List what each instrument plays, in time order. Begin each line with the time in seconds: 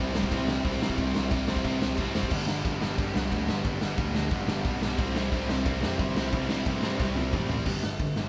Already playing: overdriven electric guitar C3
0.00 picked electric bass C2, overdriven electric guitar G3 C4 E4
0.14 picked electric bass C2, overdriven electric guitar C3 G3 C4 E4, snare
0.23 kick
0.32 picked electric bass C2, overdriven electric guitar C3 G3 C4 E4, kick, crash
0.48 snare
0.65 picked electric bass C2, overdriven electric guitar C3 G3 C4 E4, kick, crash
0.81 picked electric bass C3, overdriven electric guitar C3 G3 C4 E4, snare
0.90 kick
0.98 picked electric bass C2, overdriven electric guitar C3 G3 C4 E4, kick, crash
1.15 picked electric bass C2, snare
1.31 picked electric bass C2, overdriven electric guitar C3 G3 C4 E4, kick, crash
1.48 picked electric bass C2, overdriven electric guitar C3 G3 C4 E4, snare
1.56 kick
1.64 picked electric bass C2, overdriven electric guitar C3 G3 C4 E4, kick, crash
1.82 picked electric bass C2, snare
1.98 picked electric bass C2, overdriven electric guitar C3 G3 C4 E4, kick, crash
2.15 picked electric bass F#1, overdriven electric guitar C3 G3 C4 E4, snare
2.23 kick
2.31 picked electric bass G1, overdriven electric guitar G2 D3 G3 B3 D4, kick, crash
2.48 overdriven electric guitar G2 D3 G3 B3 D4, snare
2.64 picked electric bass G1, overdriven electric guitar G2 D3 G3 B3 D4, kick, ride
2.81 picked electric bass G1, overdriven electric guitar G2 D3 G3 B3 D4, snare
2.98 picked electric bass G1, overdriven electric guitar G2 D3 G3 B3 D4, kick, ride
3.14 picked electric bass C2, overdriven electric guitar G2 D3 G3 B3 D4, snare
3.31 picked electric bass D2, overdriven electric guitar G2 D3 G3 B3 D4, kick, ride
3.48 picked electric bass G1, overdriven electric guitar G2 D3 G3 B3 D4, snare
3.64 picked electric bass G1, overdriven electric guitar G2 D3 G3 B3 D4, kick, ride
3.81 picked electric bass G1, overdriven electric guitar G2 D3 G3 B3 D4, snare
3.98 picked electric bass D2, overdriven electric guitar G2 D3 G3 B3 D4, kick, ride
4.14 overdriven electric guitar G2 D3 G3 B3 D4, snare
4.31 picked electric bass G1, overdriven electric guitar G2 D3 G3 B3 D4, kick, ride
4.47 picked electric bass G1, overdriven electric guitar G2 D3 G3 B3 D4, snare
4.65 picked electric bass B1, overdriven electric guitar G2 D3 G3 B3 D4, kick, ride
4.82 overdriven electric guitar G2 D3 G3 B3 D4, snare
4.98 picked electric bass C2, overdriven electric guitar C3 G3 C4 E4, kick, ride
5.16 overdriven electric guitar C3 G3 C4 E4, snare
5.32 picked electric bass C2, overdriven electric guitar C3 G3 C4 E4, kick, ride
5.49 picked electric bass C2, overdriven electric guitar C3 G3 C4 E4, snare
5.66 picked electric bass C2, overdriven electric guitar C3 G3 C4 E4, kick, ride
5.83 picked electric bass F2, overdriven electric guitar C3 G3 C4 E4, snare
5.99 picked electric bass G1, overdriven electric guitar C3 G3 C4 E4, kick, ride
6.16 picked electric bass C2, overdriven electric guitar C3 G3 C4 E4, snare
6.32 picked electric bass C2, overdriven electric guitar C3 G3 C4 E4, kick, ride
6.49 picked electric bass C2, overdriven electric guitar C3 G3 C4 E4, snare
6.66 picked electric bass G2, overdriven electric guitar C3 G3 C4 E4, kick, ride
6.83 overdriven electric guitar C3 G3 C4 E4, snare
7.00 picked electric bass C2, overdriven electric guitar C3 G3 C4 E4, kick, snare
7.17 picked electric bass C2, overdriven electric guitar C3 G3 C4 E4, high tom
7.33 picked electric bass A1, overdriven electric guitar C3 G3 C4 E4, kick, mid tom
7.49 overdriven electric guitar C3 G3 C4 E4, floor tom
7.66 picked electric bass G1, overdriven electric guitar G2 D3 G3, kick, crash
7.83 picked electric bass G1, overdriven electric guitar G2 D3, snare
8.00 picked electric bass G1, overdriven electric guitar G2 D3, kick, open hi-hat
8.16 picked electric bass G1, overdriven electric guitar G2 D3, snare